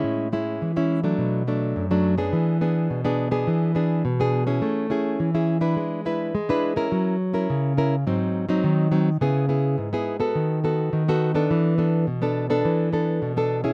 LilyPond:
\new Staff \with { instrumentName = "Nylon-string guitar" } { \time 4/4 \key e \mixolydian \tempo 4 = 105 << { <gis cis' e'>8 <gis cis' e'>8. <gis cis' e'>8 <fis a d'>8. <fis a d'>8. <fis a d'>8 <b d' gis'>16~ | <b d' gis'>8 <b d' gis'>8. <b d' gis'>8 <b d' gis'>8. <b d' gis'>8 r16 <b d' gis'>8 <cis' e' gis'>16~ | <cis' e' gis'>8 <cis' e' gis'>8. <cis' e' gis'>8 <d' e' b'>8. <d' e' b'>8 r16 <d' e' b'>8 <cis' e' bes'>16~ | <cis' e' bes'>8 r16 <cis' e' ais'>8. <cis' e' ais'>16 r16 <fis bis dis'>8. <fis bis dis'>8. <fis bis dis'>16 r16 |
<b e' gis'>8 <b e' gis'>8. <b e' gis'>8 <b fis' a'>8. <b fis' a'>8. <b fis' a'>8 <b d' a'>16~ | <b d' a'>8 <b d' a'>8 r16 <b d' a'>8 <b d' a'>8. <b d' a'>8. <b d' a'>8 <cis' e' gis'>16 | } \\ { a,4 e4 b,4 fis,4 | e4 b,4 e4 b,4 | a4 e4 gis4 gis4 | fis4 cis4 gis,4 dis4 |
cis4 gis,4 dis4 dis4 | e4 b,4 e4 b,4 | } >> }